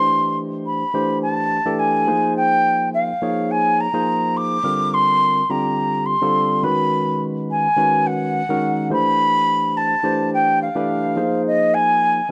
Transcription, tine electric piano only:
Already playing: E3 A3 D4 G4 C5
0.93 E3 A3 D4 G4 C5
1.65 E3 A3 D4 G4 A4
2.07 F3 A#3 D#4 G#4 C5
3.21 F3 A#3 D#4 G#4 C#5
3.93 F3 A#3 D#4 G#4 C5
4.63 D3 G3 C4 F4 A#4
5.49 D3 G3 C4 F4 G4
6.21 D3 G3 C4 F4 A4
6.63 D#3 G#3 C#4 F#4 B4
7.76 D#3 G#3 C#4 F#4 B4
8.49 D#3 G#3 C#4 F#4 A#4
8.90 E3 A3 D4 G4 C5
10.03 E3 A3 D4 G4 C5
10.75 E3 A3 D4 G4 B4
11.16 F3 A#3 D#4 G#4 C5

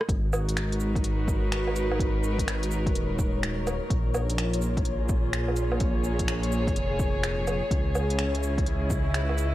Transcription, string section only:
0.09 G#3
0.25 F#4
0.34 D#4
0.38 A#4
0.74 B4
3.90 A#2
4.26 F4
4.35 A#3
4.95 G#4
5.62 C#5
7.71 C#3
7.85 C#4
8.13 E4
8.39 D#5
9.25 B4

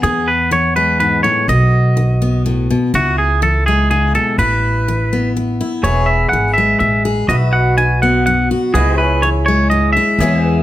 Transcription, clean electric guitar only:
0.03 G#4
0.28 B4
0.53 C#5
0.76 B4
1.00 B4
1.23 C#5
1.49 D#5
2.95 F#4
3.18 G#4
3.43 A4
3.66 G#4
3.91 G#4
4.15 A4
4.39 B4
5.84 C#5
6.06 E5
6.29 F#5
6.54 E5
6.79 E5
7.29 D#5
7.53 F#5
7.78 G#5
8.02 F#5
8.26 F#5
8.74 G#4
8.98 B4
9.22 C#5
9.46 C#5
9.70 D#5
9.93 E5

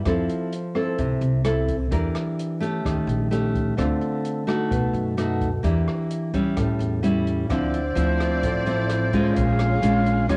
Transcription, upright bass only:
0.05 F2
0.99 C2
1.21 C2
1.92 E2
2.86 D#2
3.07 A#1
3.78 D2
4.71 B1
4.93 F#2
5.64 E2
6.57 A1
6.79 E2
7.50 D2
7.96 D2
8.43 A1
9.37 A#1
9.82 A#1
10.29 D#2

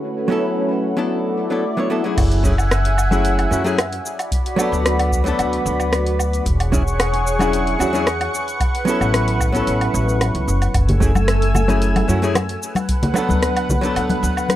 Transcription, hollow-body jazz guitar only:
0.28 F#3 B3 C#4 E4
0.32 A4
0.97 F#3 B3 D4 E4 A4
1.50 F#3 B3 D4 E4 A4
1.77 F#3 B3 D4 E4 C#5
1.90 F#3 B3 D4 E4 A4
2.04 F#3 A3 C#4 E4 G#4
2.43 F#3 A3 C#4 E4 G#4
3.11 F#3 A3 C#4 E4 G#4
3.51 F#3 A3 C#4 E4 F#4
3.64 F#3 A3 C#4 E4 G#4
4.56 F#3 A3 B3 D4
4.60 A4
5.24 F#3 A3 B3 D4
5.28 A4
6.72 F#3 C#4 D4 E4 G#4
7.39 F#3 C#4 D4 E4 G#4
7.79 F#3 C#4 D4 E4 F#4
7.93 F#3 C#4 D4 E4 G#4
8.85 F#3 B3 C#4 E4
8.89 A4
9.52 F#3 B3 C#4 E4
9.57 A4
11.00 F#3 A3 C#4 E4 G#4
11.68 F#3 A3 C#4 E4 G#4
12.08 F#3 A3 C#4 E4 F#4
12.22 F#3 A3 C#4 E4 G#4
13.14 F#3 A3 B3 D4
13.18 A4
13.81 F#3 A3 B3 D4
13.85 A4

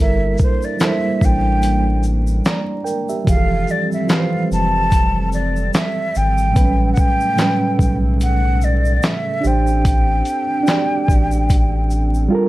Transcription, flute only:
0.01 E5
0.43 C5
0.64 D5
0.83 E5
1.25 G5
3.29 F5
3.71 D5
3.93 E5
4.10 F5
4.53 A5
5.34 D5
5.76 E5
6.17 G5
6.93 F#5
6.99 G5
8.23 F#5
8.64 D5
9.04 E5
9.47 G5

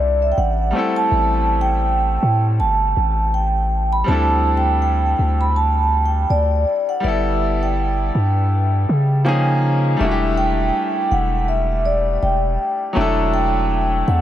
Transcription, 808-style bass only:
Already playing: C2
0.38 A1
1.12 A1
2.23 A2
2.60 G1
2.97 A1
4.08 D2
5.19 D2
6.30 D2
7.04 G1
8.15 G2
8.89 C#3
10.00 E1
11.11 E1
12.23 E1
12.97 E1
14.08 E2

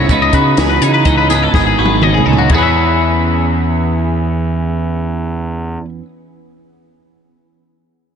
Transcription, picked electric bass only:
0.09 C#2
0.33 C#3
0.58 C#2
0.82 C#3
1.05 C#2
1.54 G#1
1.79 G#1
2.27 C#2
2.50 E2

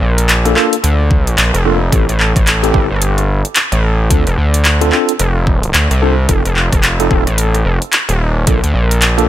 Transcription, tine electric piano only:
0.45 A#3 D4 F4 A4
0.56 A#3 D4 F4 A4
1.65 A#3 D4 F4 A4
1.92 C4 E4 G4 A4
2.63 C4 E4 G4 A4
2.73 C4 E4 G4 A4
4.10 C4 D4 F4 A4
4.81 C4 D4 F4 A4
4.92 C4 D4 F4 A4
6.02 C4 D4 F4 A4
6.29 C4 D#4 F4 A4
7.00 C4 D#4 F4 A4
7.11 C4 D#4 F4 A4
8.47 A#3 D4 F4 A4
9.18 A#3 D4 F4 A4

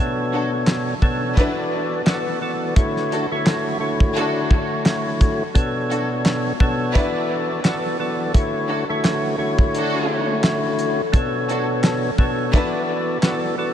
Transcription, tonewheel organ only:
Already playing: B2 B3 D4 A4 C#5
1.02 B2 B3 D4 A4 C#5
1.37 E3 B3 F#4 A4 D5
2.06 E3 B3 F#4 A4 D5
2.42 E3 B3 F#4 A4 D5
2.76 D3 A3 E4 F#4 C#5
3.31 D3 A3 E4 F#4 C#5
3.80 D3 A3 E4 F#4 C#5
5.54 B2 B3 D4 A4 C#5
6.60 B2 B3 D4 A4 C#5
6.95 E3 B3 F#4 A4 D5
7.64 E3 B3 F#4 A4 D5
8.00 E3 B3 F#4 A4 D5
8.33 D3 A3 E4 F#4 C#5
8.89 D3 A3 E4 F#4 C#5
9.38 D3 A3 E4 F#4 C#5
11.12 B2 B3 D4 A4 C#5
12.18 B2 B3 D4 A4 C#5
12.53 E3 B3 F#4 A4 D5
13.23 E3 B3 F#4 A4 D5
13.58 E3 B3 F#4 A4 D5

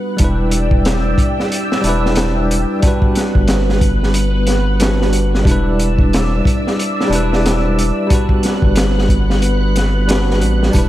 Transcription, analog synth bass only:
0.20 E1
1.84 E1
3.36 G1
5.45 E1
7.10 E1
8.62 G1
10.41 A1
10.74 E1

